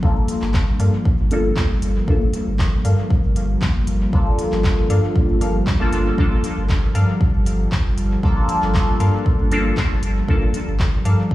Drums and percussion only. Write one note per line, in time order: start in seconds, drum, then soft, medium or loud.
0.03 kick loud
0.28 closed hi-hat medium
0.42 clap soft
0.54 kick loud
0.54 clap medium
0.80 closed hi-hat medium
1.05 kick loud
1.31 closed hi-hat medium
1.57 kick loud
1.57 clap medium
1.82 closed hi-hat medium
2.08 kick loud
2.33 closed hi-hat medium
2.59 kick loud
2.59 clap medium
2.85 closed hi-hat medium
3.10 kick loud
3.36 closed hi-hat medium
3.62 kick loud
3.62 clap medium
3.87 closed hi-hat medium
4.13 kick loud
4.39 closed hi-hat medium
4.52 clap soft
4.64 kick loud
4.64 clap medium
4.90 closed hi-hat medium
5.16 kick loud
5.41 closed hi-hat medium
5.67 kick loud
5.67 clap medium
5.93 closed hi-hat medium
6.18 kick loud
6.44 closed hi-hat medium
6.69 kick loud
6.69 clap medium
6.95 closed hi-hat medium
7.21 kick loud
7.46 closed hi-hat medium
7.72 kick loud
7.72 clap medium
7.98 closed hi-hat medium
8.23 kick loud
8.49 closed hi-hat medium
8.62 clap soft
8.75 kick loud
8.75 clap medium
9.00 closed hi-hat medium
9.26 kick loud
9.51 closed hi-hat medium
9.77 kick loud
9.77 clap medium
10.03 closed hi-hat medium
10.28 kick loud
10.54 closed hi-hat medium
10.80 kick loud
10.80 clap medium
11.05 closed hi-hat medium
11.31 kick loud